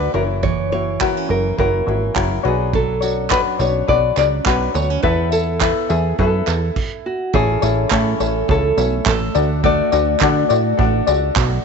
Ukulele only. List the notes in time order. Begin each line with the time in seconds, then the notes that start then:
Already playing: D4 F#4 A4 D5
0.14 E4 F#4 A#4 C#5
0.71 E4 F#4 C#5
1.00 E4 F#4 A#4 C#5
1.28 E4 F#4 C#5
1.57 E4 F#4 A#4 C#5
1.86 E4 F#4 C#5
2.14 E4 F#4 A#4 C#5
2.43 D4 F#4 B4 C#5
3.01 D4 F#4 C#5
3.30 D4 F#4 B4 C#5
3.59 D4 F#4 C#5
3.88 D4 F#4 B4 C#5
4.16 D4 F#4 C#5
4.45 D4 F#4 B4 C#5
5.03 E4 A4 B4 E5
5.31 E4 A4 E5
5.61 E4 A4 B4 E5
5.89 E4 A4 E5
6.19 E4 A4 B4 E5
6.46 E4 A4 E5
7.34 C#4 E4 A4 C#5
7.62 C#4 E4 A4 C#5
7.91 C#4 E4 A4 C#5
8.20 C#4 E4 C#5
8.48 C#4 E4 A4 C#5
8.77 C#4 E4 C#5
9.35 D4 F#4 D5
9.63 D4 F#4 A4 D5
9.92 D4 F#4 A4 D5
10.21 D4 F#4 A4 D5
10.49 D4 F#4 D5
10.77 D4 F#4 A4 D5
11.07 D4 F#4 D5